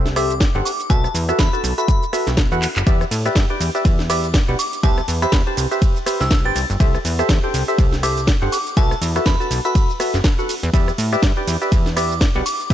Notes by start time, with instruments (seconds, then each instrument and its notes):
Already playing: analog synth bass C2
0.05 snare, closed hi-hat, shaker
0.16 synth stab G4 A4 C5 E5, synth bell D6, cross-stick, open hi-hat, shaker
0.31 closed hi-hat, shaker
0.40 kick, snare, closed hi-hat, shaker
0.55 analog synth bass G1, synth stab G4 A4 C5 F#5, closed hi-hat
0.65 synth bell D6, open hi-hat, shaker
0.80 closed hi-hat, shaker
0.90 analog synth bass B1, synth stab F#4 A4 B4 E5, synth bell A5, kick, closed hi-hat, shaker
1.04 cross-stick, closed hi-hat, shaker
1.15 analog synth bass E2, open hi-hat, shaker
1.29 synth stab F#4 A4 B4 E5, cross-stick, closed hi-hat, shaker
1.39 analog synth bass E2, synth bell B5, kick, snare, closed hi-hat, shaker
1.53 synth stab F#4 A4 B4 A5, closed hi-hat, shaker
1.64 analog synth bass B1, open hi-hat, shaker
1.78 synth stab F#4 A4 B4 E5, synth bell B5, closed hi-hat, shaker
1.88 kick, closed hi-hat, shaker
2.03 closed hi-hat, shaker
2.13 synth stab F#4 A4 B4 E5, cross-stick, open hi-hat, shaker
2.27 analog synth bass B1, snare, closed hi-hat, shaker
2.37 kick, snare, closed hi-hat, shaker
2.52 analog synth bass E2, synth stab F#4 A4 B4 F#5, closed hi-hat, shaker
2.62 clap, open hi-hat, shaker
2.76 analog synth bass F#1, clap, closed hi-hat, shaker
2.87 analog synth bass E2, synth stab G4 B4 D5 E5, kick, closed hi-hat, ride, shaker
3.01 cross-stick, closed hi-hat, shaker
3.11 analog synth bass A2, open hi-hat, ride, shaker
3.25 synth stab G4 B4 D5 E5, cross-stick, closed hi-hat, shaker
3.35 analog synth bass G2, kick, snare, closed hi-hat, ride, shaker
3.50 synth stab G4 B4 D5 G5, closed hi-hat
3.60 analog synth bass E2, open hi-hat, ride, shaker
3.75 synth stab G4 B4 D5 E5, closed hi-hat, shaker
3.85 analog synth bass E2, kick, closed hi-hat, ride, shaker
3.99 snare, closed hi-hat, shaker
4.10 synth stab G4 B4 D5 E5, synth bell D6, cross-stick, open hi-hat, ride, shaker
4.24 closed hi-hat, shaker
4.34 kick, snare, closed hi-hat, ride, shaker
4.48 analog synth bass B1, synth stab G4 B4 D5 F#5, closed hi-hat
4.59 synth bell D6, open hi-hat, ride, shaker
4.73 closed hi-hat, shaker
4.83 analog synth bass C2, synth stab G4 B4 C5 E5, synth bell A5, kick, closed hi-hat, ride, shaker
4.98 cross-stick, closed hi-hat, shaker
5.08 analog synth bass E2, open hi-hat, ride, shaker
5.22 synth stab G4 B4 C5 E5, synth bell B5, cross-stick, closed hi-hat, shaker
5.32 analog synth bass E2, kick, snare, closed hi-hat, ride, shaker
5.47 synth stab G4 B4 C5 A5, closed hi-hat
5.57 analog synth bass C2, open hi-hat, ride, shaker
5.71 synth stab G4 B4 C5 E5, closed hi-hat, shaker
5.82 kick, closed hi-hat, ride, shaker
5.96 closed hi-hat, shaker
6.06 synth stab G4 B4 C5 E5, cross-stick, open hi-hat, ride, shaker
6.20 analog synth bass C2, synth bell E6, snare, closed hi-hat, shaker
6.31 kick, snare, closed hi-hat, ride, shaker
6.45 analog synth bass G1, synth stab G4 B4 C5 G5, synth bell A6, closed hi-hat
6.56 analog synth bass C2, synth bell A6, open hi-hat, ride, shaker
6.70 analog synth bass G1, closed hi-hat, shaker
6.80 analog synth bass C2, synth stab G4 A4 C5 E5, kick, closed hi-hat, ride, shaker
6.95 cross-stick, closed hi-hat, shaker
7.05 analog synth bass E2, open hi-hat, ride, shaker
7.19 synth stab G4 A4 C5 E5, cross-stick, closed hi-hat, shaker
7.29 analog synth bass E2, kick, snare, closed hi-hat, ride, shaker
7.44 synth stab G4 A4 C5 G5, closed hi-hat
7.54 analog synth bass C2, open hi-hat, ride, shaker
7.68 synth stab G4 A4 C5 E5, closed hi-hat, shaker
7.78 analog synth bass C2, kick, closed hi-hat, ride, shaker
7.92 snare, closed hi-hat, shaker
8.03 synth stab G4 A4 C5 E5, synth bell D6, cross-stick, open hi-hat, ride, shaker
8.17 closed hi-hat, shaker
8.27 kick, snare, closed hi-hat, ride, shaker
8.42 analog synth bass G1, synth stab G4 A4 C5 F#5, closed hi-hat
8.52 synth bell D6, open hi-hat, ride, shaker
8.67 closed hi-hat, shaker
8.77 analog synth bass B1, synth stab F#4 A4 B4 E5, synth bell A5, kick, closed hi-hat, ride, shaker
8.91 cross-stick, closed hi-hat, shaker
9.01 analog synth bass E2, open hi-hat, ride, shaker
9.16 synth stab F#4 A4 B4 E5, cross-stick, closed hi-hat, shaker
9.26 analog synth bass E2, synth bell B5, kick, snare, closed hi-hat, ride, shaker
9.40 synth stab F#4 A4 B4 A5, closed hi-hat, shaker
9.51 analog synth bass B1, open hi-hat, ride, shaker
9.65 synth stab F#4 A4 B4 E5, synth bell B5, closed hi-hat, shaker
9.75 kick, closed hi-hat, ride, shaker
9.90 closed hi-hat, shaker
10.00 synth stab F#4 A4 B4 E5, cross-stick, open hi-hat, ride, shaker
10.14 analog synth bass F#1, snare, closed hi-hat, shaker
10.24 kick, snare, closed hi-hat, ride, shaker
10.39 synth stab F#4 A4 B4 F#5, closed hi-hat, shaker
10.49 open hi-hat, ride, shaker
10.63 analog synth bass E2, closed hi-hat, shaker
10.73 analog synth bass E2, synth stab G4 B4 D5 E5, kick, closed hi-hat, ride, shaker
10.88 cross-stick, closed hi-hat, shaker
10.98 analog synth bass A2, open hi-hat, ride, shaker
11.12 synth stab G4 B4 D5 E5, cross-stick, shaker
11.22 analog synth bass G2, kick, snare, closed hi-hat, ride, shaker
11.37 synth stab G4 B4 D5 G5, closed hi-hat
11.47 analog synth bass E2, open hi-hat, ride, shaker
11.62 synth stab G4 B4 D5 E5, closed hi-hat, shaker
11.72 analog synth bass E2, kick, closed hi-hat, ride, shaker
11.86 snare, closed hi-hat, shaker
11.96 synth stab G4 B4 D5 E5, synth bell D6, cross-stick, open hi-hat, ride, shaker
12.11 closed hi-hat, shaker
12.21 kick, snare, closed hi-hat, ride, shaker
12.35 analog synth bass B1, synth stab G4 B4 D5 F#5, closed hi-hat
12.46 synth bell D6, open hi-hat, ride, shaker
12.60 closed hi-hat, shaker
12.70 analog synth bass C2, synth stab G4 B4 C5 E5, kick, closed hi-hat, ride